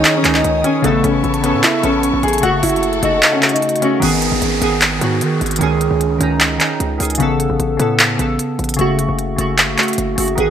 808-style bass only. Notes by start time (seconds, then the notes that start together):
0.25 C#2
0.44 C#2
0.84 A1
1.04 A1
1.24 A1
1.54 A2
1.83 A1
2.13 A1
2.23 A1
2.43 F#1
2.63 F#1
3.03 F#1
4.02 G#1
4.32 G#1
4.42 G#1
4.62 G#1
5.01 G#2
5.21 D#3
5.41 G#1
5.61 C#2
5.91 C#2
6.21 C#2
6.80 C#2
7.00 C#2
7.20 A1
7.50 A1
7.60 A1
7.79 A2
8.19 A1
8.59 A1
8.79 F#1
9.09 F#1
9.38 F#1
9.98 F#1
10.18 F#1
10.38 G#1